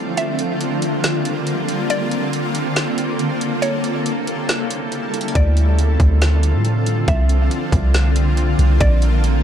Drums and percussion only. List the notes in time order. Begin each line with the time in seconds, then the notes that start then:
0.17 closed hi-hat
0.39 closed hi-hat
0.61 closed hi-hat
0.82 closed hi-hat
1.04 snare, closed hi-hat
1.25 closed hi-hat
1.47 closed hi-hat
1.68 closed hi-hat
1.90 closed hi-hat
2.11 closed hi-hat
2.33 closed hi-hat
2.55 closed hi-hat
2.76 snare, closed hi-hat
2.98 closed hi-hat
3.19 closed hi-hat
3.41 closed hi-hat
3.63 closed hi-hat
3.84 closed hi-hat
4.06 closed hi-hat
4.27 closed hi-hat
4.49 snare, closed hi-hat
4.71 closed hi-hat
4.92 closed hi-hat
5.14 closed hi-hat
5.21 closed hi-hat
5.28 closed hi-hat
5.35 kick, closed hi-hat
5.57 closed hi-hat
5.79 closed hi-hat
6.00 kick, closed hi-hat
6.22 snare, closed hi-hat
6.43 closed hi-hat
6.65 closed hi-hat
6.86 closed hi-hat
7.08 kick, closed hi-hat
7.29 closed hi-hat
7.51 closed hi-hat
7.72 kick, closed hi-hat
7.94 snare, closed hi-hat
8.16 closed hi-hat
8.37 closed hi-hat
8.59 closed hi-hat
8.81 kick, closed hi-hat
9.02 closed hi-hat
9.24 closed hi-hat